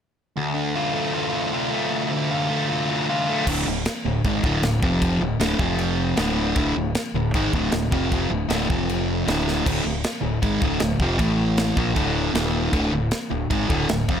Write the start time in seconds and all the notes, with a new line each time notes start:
0.37 D2
0.54 D3
0.76 F4
0.94 A3
1.14 F4
1.33 D3
1.53 F4
1.71 A3
1.90 D2
2.11 D3
2.31 F4
2.50 A3
2.69 F4
2.89 D3
3.09 F4
3.29 A3
3.47 D1 D2 A2 D3, kick, crash, china
3.67 D1 D2 A2
3.85 snare, china
4.06 D1 D2 A2
4.24 G#1 G#2 D#3 G#3, kick, china
4.43 D1 D2 A2 D3, kick
4.63 D1 D2 A2, snare, china
4.82 F1 F2 C3 F3, kick
5.02 kick, china
5.21 D1 D2 A2
5.40 D1 D2 A2 D3, snare, china
5.59 F1 F2 C3 F3, kick
5.79 china
6.17 D1 D2 A2 D3, snare, china
6.56 D1 D2 A2 D3, kick, china
6.76 D1 D2 A2
6.95 snare, china
7.14 D1 D2 A2
7.34 G#1 G#2 D#3 G#3, kick, china
7.53 D1 D2 A2 D3, kick
7.72 D1 D2 A2, snare, china
7.91 F1 F2 C3 F3, kick
8.12 kick, china
8.30 D1 D2 A2
8.49 D1 D2 A2 D3, snare, china
8.69 F1 F2 C3 F3, kick
8.89 china
9.26 D1 D2 A2 D3, snare, china
9.48 snare
9.66 D1 D2 A2 D3, kick, crash, china
9.84 D1 D2 A2
10.04 snare, china
10.21 D1 D2 A2
10.42 G#1 G#2 D#3 G#3, kick, china
10.62 D1 D2 A2 D3, kick
10.80 D1 D2 A2, snare, china
10.99 F1 F2 C3 F3, kick
11.19 A1 A2 E3 A3, kick, china
11.57 snare, china
11.77 A#1 A#2 F3 A#3, kick
11.95 D1 D2 A2 D3, kick, china
12.34 D#1 D#2 A#2 D#3, snare, china
12.72 D1 D2 A2 D3, kick, china
12.92 D1 D2 A2
13.11 snare, china
13.30 D1 D2 A2
13.50 G#1 G#2 D#3 G#3, kick, china
13.68 D1 D2 A2 D3, kick
13.89 D1 D2 A2, snare, china
14.09 F1 F2 C3 F3, kick